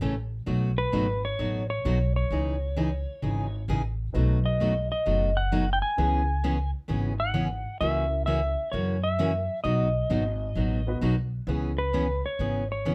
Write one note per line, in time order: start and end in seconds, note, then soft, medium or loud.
0.01 0.40 A1 medium
0.01 0.13 C#3 medium
0.01 0.14 E3 medium
0.01 0.14 A3 medium
0.01 0.14 C#4 medium
0.01 0.14 A4 medium
0.46 0.84 B1 medium
0.46 0.70 B2 medium
0.46 0.70 F#3 medium
0.46 0.70 A3 medium
0.46 0.70 D#4 medium
0.46 0.70 F#4 medium
0.78 1.25 B4 medium
0.92 1.32 G#1 medium
0.92 1.05 B2 medium
0.92 1.05 F#3 medium
0.92 1.05 A3 medium
0.92 1.05 D#4 medium
0.92 1.05 F#4 medium
1.25 1.69 C#5 medium
1.39 1.78 A1 medium
1.39 1.62 B2 medium
1.39 1.62 F#3 medium
1.39 1.62 A3 medium
1.39 1.63 D#4 medium
1.39 1.63 F#4 medium
1.70 2.15 C#5 loud
1.85 2.24 B1 medium
1.85 1.97 B2 medium
1.85 1.97 F#3 medium
1.85 1.97 A3 medium
1.85 1.97 D#4 medium
1.85 1.97 F#4 medium
2.16 3.65 C#5 medium
2.30 3.04 C#2 medium
2.30 2.54 C#3 medium
2.30 2.54 E3 medium
2.30 2.55 D#4 medium
2.30 2.55 G#4 medium
2.77 2.89 C#3 medium
2.77 2.89 E3 medium
2.77 2.89 D#4 medium
2.77 2.89 G#4 medium
3.22 3.61 G#1 medium
3.22 3.45 C#3 medium
3.22 3.46 E3 medium
3.22 3.46 D#4 medium
3.22 3.46 G#4 medium
3.68 4.07 A1 medium
3.68 3.81 C#3 medium
3.68 3.81 E3 medium
3.68 3.81 D#4 medium
3.68 3.81 G#4 medium
4.13 4.88 B1 medium
4.13 4.37 B2 medium
4.13 4.38 F#3 medium
4.13 4.38 A3 medium
4.13 4.84 D#4 medium
4.13 4.38 D#4 medium
4.13 4.84 F#4 soft
4.13 4.38 F#4 medium
4.13 4.84 A4 medium
4.13 4.84 B4 medium
4.46 4.91 D#5 medium
4.60 4.72 B2 medium
4.60 4.73 F#3 medium
4.60 4.73 A3 medium
4.60 4.73 D#4 medium
4.60 4.73 F#4 medium
4.92 5.39 D#5 medium
5.06 5.79 F#1 medium
5.06 5.29 B2 medium
5.06 5.29 F#3 medium
5.06 5.29 A3 medium
5.06 5.29 D#4 medium
5.06 5.29 F#4 medium
5.37 5.73 F#5 loud
5.52 5.64 B2 medium
5.52 5.64 F#3 medium
5.52 5.64 A3 medium
5.52 5.64 D#4 medium
5.52 5.64 F#4 medium
5.73 5.82 G5 medium
5.82 6.70 G#5 medium
5.97 6.71 C#2 medium
5.97 6.21 C#3 medium
5.97 6.21 E3 medium
5.97 6.21 B3 medium
5.97 6.25 C#4 medium
5.97 6.21 C#4 medium
5.97 6.25 E4 medium
5.97 6.26 G#4 medium
5.97 6.21 G#4 medium
5.97 6.26 B4 medium
6.44 6.56 C#3 medium
6.44 6.56 E3 medium
6.44 6.56 B3 medium
6.44 6.56 C#4 medium
6.44 6.56 G#4 medium
6.88 7.63 G#1 medium
6.88 7.11 C#3 medium
6.88 7.12 E3 medium
6.88 7.12 B3 medium
6.88 7.12 C#4 medium
6.88 7.12 G#4 medium
7.20 7.80 F#5 loud
7.34 7.46 C#3 medium
7.34 7.47 E3 medium
7.34 7.47 B3 medium
7.34 7.47 C#4 medium
7.34 7.47 G#4 medium
7.81 8.54 C#2 medium
7.81 8.04 C#3 medium
7.81 8.04 E3 medium
7.81 8.04 A#3 medium
7.81 8.52 C#4 medium
7.81 8.04 C#4 medium
7.81 8.52 E4 medium
7.81 8.52 F#4 medium
7.81 8.04 F#4 medium
7.81 8.52 A#4 medium
7.81 8.25 E5 loud
8.26 8.39 C#3 medium
8.26 8.39 E3 medium
8.26 8.39 A#3 medium
8.26 8.39 C#4 medium
8.26 8.39 F#4 medium
8.26 8.74 E5 medium
8.72 9.46 F#2 medium
8.72 8.96 C#3 medium
8.72 8.96 E3 medium
8.72 8.96 A#3 medium
8.72 8.96 C#4 medium
8.72 8.96 F#4 medium
8.72 9.04 C#5 medium
9.04 9.63 E5 loud
9.19 9.31 C#3 medium
9.19 9.31 E3 medium
9.19 9.31 A#3 medium
9.19 9.31 C#4 medium
9.19 9.31 F#4 medium
9.64 10.01 B1 medium
9.64 9.87 B2 medium
9.64 9.87 F#3 medium
9.64 9.87 B3 medium
9.64 9.87 D#4 medium
9.64 9.87 F#4 medium
9.64 10.97 D#5 medium
10.10 10.49 G#1 medium
10.10 10.22 B2 medium
10.10 10.22 F#3 medium
10.10 10.22 B3 medium
10.10 10.22 D#4 medium
10.10 10.22 F#4 medium
10.55 10.94 A1 medium
10.55 10.79 B2 medium
10.55 10.79 F#3 medium
10.55 10.79 B3 medium
10.55 10.79 D#4 medium
10.55 10.79 F#4 medium
10.87 11.00 B3 medium
10.87 11.00 D#4 medium
10.87 11.00 F#4 medium
10.87 11.01 B4 medium
11.01 11.41 B1 medium
11.01 11.14 B2 medium
11.01 11.14 F#3 medium
11.01 11.14 B3 medium
11.01 11.14 D#4 medium
11.01 11.14 F#4 medium
11.47 12.20 C#2 medium
11.47 11.71 C#3 soft
11.47 11.71 E3 medium
11.47 11.71 B3 medium
11.47 11.75 C#4 medium
11.47 11.71 C#4 medium
11.47 11.75 E4 medium
11.47 11.75 G#4 medium
11.47 11.71 G#4 medium
11.47 11.75 B4 medium
11.78 12.25 B4 medium
11.93 12.05 C#3 medium
11.93 12.06 E3 medium
11.93 12.06 B3 medium
11.93 12.06 C#4 medium
11.93 12.06 G#4 medium
12.26 12.67 C#5 medium
12.39 12.95 G#1 medium
12.39 12.62 C#3 medium
12.39 12.62 E3 medium
12.39 12.62 B3 medium
12.39 12.62 C#4 medium
12.39 12.63 G#4 medium
12.72 12.95 C#5 medium
12.85 12.95 C#3 medium
12.85 12.95 E3 medium
12.85 12.95 B3 medium
12.85 12.95 C#4 medium
12.85 12.95 G#4 medium